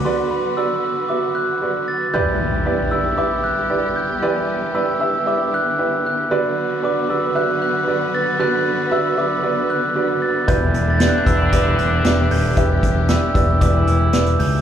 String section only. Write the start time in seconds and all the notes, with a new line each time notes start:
Already playing: D3 F#3 B3 F#4 B4
2.13 D3 G3 B3 E4 G4
4.22 D4
6.31 F#3 F#4 B4
10.48 G3 E4 G4
12.57 D4